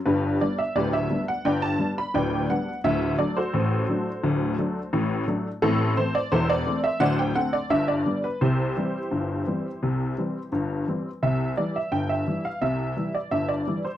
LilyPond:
<<
  \new Staff \with { instrumentName = "Honky-tonk piano" } { \time 2/4 \key d \mixolydian \tempo 4 = 86 <d' g' b'>8 d''16 e''16 <g' b' d''>16 e''8 fis''16 | <b' d'' g''>16 a''8 b''16 <b' d'' g''>8 fis''8 | e''8 d''16 <fis' a' c''>4~ <fis' a' c''>16~ | <fis' a' c''>4. r8 |
\key c \major <c' e' a'>8 c''16 d''16 <e' a' c''>16 d''8 e''16 | <c'' d'' fis''>16 g''16 fis''16 d''16 e''16 d''8 b'16 | <e' g' c''>2~ | <e' g' c''>4 r4 |
e''8 d''16 e''16 g''16 e''8 f''16 | e''8. d''16 e''16 d''8 c''16 | }
  \new Staff \with { instrumentName = "Honky-tonk piano" } { \clef bass \time 2/4 \key d \mixolydian <g,, g,>8 <g b d'>8 <d,, d,>8 <g b d'>8 | <g,, g,>8 <g b d'>8 <d,, d,>8 <g b d'>8 | <d,, d,>8 <fis a d'>8 <a,, a,>8 <fis a d'>8 | <d,, d,>8 <fis a d'>8 <a,, a,>8 <fis a d'>8 |
\key c \major <a,, a,>8 <e a c'>8 <e,, e,>8 <e a c'>8 | <d,, d,>8 <d a c'>8 <g,, g,>8 <d g b>8 | <c, c>8 <e g c'>8 <g,, g,>8 <e g c'>8 | <c, c>8 <e g c'>8 <g,, g,>8 <e g c'>8 |
<c, c>8 <e g e'>8 <g,, g,>8 <e g e'>8 | <c, c>8 <e g e'>8 <g,, g,>8 <e g e'>8 | }
>>